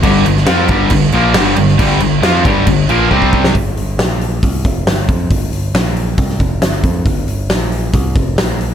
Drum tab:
CC |x-x-x-x-x-x-x-x-|x-x-x-x-x-x-----|----------------|----------------|
HH |----------------|----------------|o-o-o-o-o-o-o-o-|o-o-o-o-o-o-o-o-|
SD |---oo-------o--o|----o----------o|----o-------o---|----o----o--o---|
BD |o-----o-o-------|o-----o-o---ooo-|o-------o-o---o-|o-------o-o---o-|

CC |----------------|
HH |o-o-o-o-o-o-o-o-|
SD |----o-------o---|
BD |o-------o-o-----|